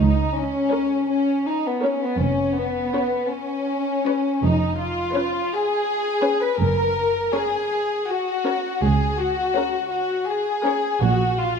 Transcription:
Already playing: double bass section C#2, cello section C#2, violin section D#4
0.35 violin section C#4
0.71 viola section C#4 A#4, violin section C#5
1.09 violin section C#4
1.48 violin section D#4
1.67 violin section B3
1.82 viola section C#4 A#4, violin section C#4 C#5
2.04 violin section B3
2.19 double bass section F1, cello section F2, violin section C#4
2.56 violin section B3
2.94 viola section C#4 B4, violin section C#5
3.31 violin section C#4
4.05 viola section C#4 B4, violin section C#5
4.41 double bass section F1, cello section F2, violin section D#4
4.79 violin section F4
5.13 viola section C#4 B4, violin section C#5
5.52 violin section G#4
6.22 viola section C#4 B4, violin section C#5
6.42 violin section B4
6.58 double bass section F#1, cello section F#2, violin section A#4
7.33 viola section C#4 A#4, violin section G#4 C#5
8.09 violin section F#4
8.46 viola section C#4 A#4, violin section C#5
8.82 cello section C#2, double bass section C#2, violin section G#4
9.19 violin section F#4
9.55 viola section C#4 A#4, violin section C#5
9.91 violin section F#4
10.28 violin section G#4
10.64 viola section C#4 A#4, violin section C#5
11.01 double bass section A#1, cello section A#2, violin section F#4
11.38 violin section F4

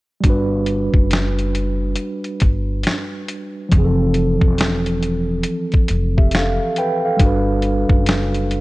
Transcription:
0.21 upright bass G1, tine electric piano G3 D4, kick, closed hi-hat
0.27 tine electric piano F#4 B4
0.66 closed hi-hat
0.94 upright bass F#1, kick
1.11 snare, closed hi-hat
1.39 closed hi-hat
1.55 closed hi-hat
1.96 closed hi-hat
2.24 closed hi-hat
2.40 upright bass G1, kick, closed hi-hat
2.83 snare, closed hi-hat
3.28 closed hi-hat
3.69 upright bass F1, tine electric piano F3 C4, kick, closed hi-hat
3.75 tine electric piano E3 G#4
3.84 tine electric piano A4
4.14 closed hi-hat
4.41 upright bass E1, kick
4.58 snare, closed hi-hat
4.86 closed hi-hat
5.03 closed hi-hat
5.43 closed hi-hat
5.72 kick, closed hi-hat
5.88 upright bass F1, closed hi-hat
6.18 tine electric piano G4 E5, kick
6.31 snare, closed hi-hat
6.36 tine electric piano A4 F5
6.76 tine electric piano B4 G5, closed hi-hat
7.05 tine electric piano A4 F5
7.17 upright bass G1, tine electric piano G3 D4, kick, closed hi-hat
7.23 tine electric piano F#4 B4
7.62 closed hi-hat
7.89 upright bass F#1, kick
8.06 snare, closed hi-hat
8.34 closed hi-hat
8.51 closed hi-hat

